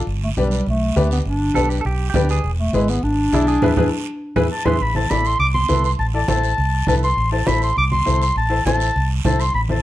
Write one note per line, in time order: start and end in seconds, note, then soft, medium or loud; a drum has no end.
0.06 0.31 G1 loud
0.06 high conga soft
0.06 long guiro medium
0.24 0.30 A3 medium
0.36 0.61 B1 medium
0.36 0.65 G3 medium
0.36 0.58 D4 medium
0.36 0.58 G4 medium
0.36 0.58 B4 medium
0.36 high conga medium
0.36 short guiro medium
0.51 short guiro medium
0.66 0.91 B1 loud
0.66 1.09 A3 medium
0.66 high conga soft
0.66 long guiro medium
0.96 1.20 D2 medium
0.96 1.17 D4 medium
0.96 1.17 G4 medium
0.96 1.17 B4 medium
0.96 high conga medium
0.96 short guiro medium
1.11 1.18 B3 medium
1.11 short guiro medium
1.25 1.49 G1 loud
1.25 1.81 D4 medium
1.25 high conga soft
1.25 long guiro medium
1.54 1.79 B1 medium
1.54 1.76 D4 medium
1.54 1.76 G4 medium
1.54 1.69 A4 loud
1.54 1.76 B4 medium
1.54 high conga medium
1.54 short guiro medium
1.69 1.79 G4 medium
1.69 short guiro medium
1.81 1.86 A4 medium
1.81 high conga soft
1.85 2.09 B1 medium
1.85 2.08 G4 medium
1.85 long guiro medium
2.10 2.15 G4 medium
2.14 2.38 D2 medium
2.14 2.35 D4 medium
2.14 2.36 G4 medium
2.14 2.30 G4 medium
2.14 2.36 B4 medium
2.14 high conga medium
2.14 low conga medium
2.14 short guiro medium
2.29 2.51 G#4 medium
2.29 short guiro medium
2.43 2.68 E1 loud
2.43 high conga soft
2.43 long guiro medium
2.58 2.76 A3 medium
2.73 2.97 G#1 medium
2.73 2.91 G#3 loud
2.73 2.95 E4 medium
2.73 2.95 G#4 medium
2.73 2.95 B4 medium
2.73 high conga medium
2.73 short guiro medium
2.88 3.05 B3 medium
2.88 short guiro medium
3.03 3.27 G#1 loud
3.03 4.51 D4 loud
3.03 high conga soft
3.03 long guiro medium
3.32 3.56 B1 loud
3.32 3.54 E4 medium
3.32 3.47 E4 medium
3.32 3.54 G#4 medium
3.32 3.54 D5 medium
3.32 high conga medium
3.32 short guiro medium
3.47 3.62 G#4 medium
3.47 short guiro medium
3.62 3.73 E2 medium
3.62 3.72 E4 loud
3.62 3.73 E4 loud
3.62 3.72 G#4 medium
3.62 3.73 G#4 medium
3.62 3.72 B4 medium
3.62 3.73 B4 medium
3.62 low conga loud
3.62 long guiro medium
3.77 3.88 E2 medium
3.77 3.87 E4 medium
3.77 3.87 G#4 medium
3.77 3.87 B4 medium
3.77 low conga loud
3.77 long guiro loud
4.36 4.48 E2 medium
4.36 4.46 E4 loud
4.36 4.46 E4 medium
4.36 4.46 G#4 medium
4.36 4.46 B4 loud
4.36 low conga loud
4.36 long guiro medium
4.51 4.67 A5 medium
4.65 4.77 E2 medium
4.65 4.75 E4 medium
4.65 4.76 E4 medium
4.65 4.75 G#4 medium
4.65 4.76 G#4 medium
4.65 4.75 B4 medium
4.65 4.76 B4 medium
4.65 4.84 C6 medium
4.65 low conga medium
4.81 5.04 A1 loud
4.81 4.95 B5 loud
4.81 high conga soft
4.81 long guiro medium
4.95 5.01 E4 medium
4.95 5.01 A4 medium
4.95 5.01 C5 medium
4.95 5.12 A5 medium
4.95 high conga medium
5.10 5.34 A1 medium
5.10 5.31 E4 medium
5.10 5.31 A4 medium
5.10 5.31 D5 medium
5.10 5.28 B5 loud
5.10 high conga medium
5.10 short guiro medium
5.25 5.39 C6 loud
5.25 short guiro medium
5.39 5.63 C2 loud
5.39 5.46 D6 loud
5.39 high conga soft
5.39 long guiro medium
5.54 5.82 C6 medium
5.54 high conga medium
5.68 5.93 C2 loud
5.68 5.85 E4 medium
5.68 5.85 A4 medium
5.68 5.85 B4 medium
5.68 high conga medium
5.68 short guiro medium
5.84 5.92 C6 medium
5.84 short guiro medium
5.99 6.23 A1 loud
5.99 6.06 A5 medium
5.99 high conga soft
5.99 long guiro medium
6.14 6.19 E4 medium
6.14 6.19 A4 medium
6.14 6.20 D5 medium
6.14 6.28 A5 medium
6.28 6.52 A1 medium
6.28 6.49 E4 medium
6.28 6.49 A4 medium
6.28 6.50 C5 medium
6.28 6.85 A5 loud
6.28 high conga medium
6.28 short guiro medium
6.43 short guiro medium
6.58 6.82 C2 loud
6.58 high conga soft
6.58 long guiro medium
6.87 7.11 C2 medium
6.87 7.04 E4 medium
6.87 7.04 A4 medium
6.87 7.04 B4 medium
6.87 6.95 A5 loud
6.87 high conga medium
6.87 low conga medium
6.87 short guiro medium
7.03 7.31 C6 loud
7.03 short guiro medium
7.17 7.41 A1 loud
7.17 high conga soft
7.17 long guiro medium
7.32 7.37 E4 medium
7.32 7.38 A4 medium
7.32 7.38 C5 medium
7.32 7.48 A5 medium
7.46 7.71 A1 medium
7.46 7.67 E4 medium
7.46 7.68 A4 medium
7.46 7.68 C5 medium
7.46 7.62 B5 medium
7.46 high conga loud
7.46 short guiro medium
7.62 7.76 C6 medium
7.62 short guiro medium
7.77 8.01 C2 loud
7.77 7.84 D6 loud
7.77 high conga soft
7.77 long guiro medium
7.92 8.19 C6 medium
7.92 high conga medium
8.06 8.30 C2 loud
8.06 8.22 E4 medium
8.06 8.22 A4 medium
8.06 8.22 C5 medium
8.06 high conga medium
8.06 short guiro medium
8.22 8.36 C6 medium
8.22 short guiro medium
8.36 8.60 A1 loud
8.36 8.64 A5 medium
8.36 high conga soft
8.36 long guiro medium
8.50 8.55 E4 medium
8.50 8.55 A4 medium
8.50 8.56 C5 medium
8.65 8.89 A1 loud
8.65 8.86 E4 medium
8.65 8.87 A4 medium
8.65 8.87 C5 medium
8.65 9.09 A5 medium
8.65 high conga medium
8.65 short guiro medium
8.80 short guiro medium
8.96 9.19 C2 loud
8.96 high conga soft
8.96 long guiro medium
9.25 9.49 C2 medium
9.25 9.40 E4 medium
9.25 9.40 A4 medium
9.25 9.41 C5 medium
9.25 9.42 A5 medium
9.25 high conga medium
9.25 low conga medium
9.25 short guiro medium
9.40 9.54 C6 medium
9.40 short guiro medium
9.54 9.78 A1 loud
9.54 9.61 B5 medium
9.54 high conga soft
9.54 long guiro medium
9.69 9.75 E4 medium
9.69 9.75 A4 medium
9.69 9.75 C5 medium
9.69 9.82 A5 medium
9.69 high conga medium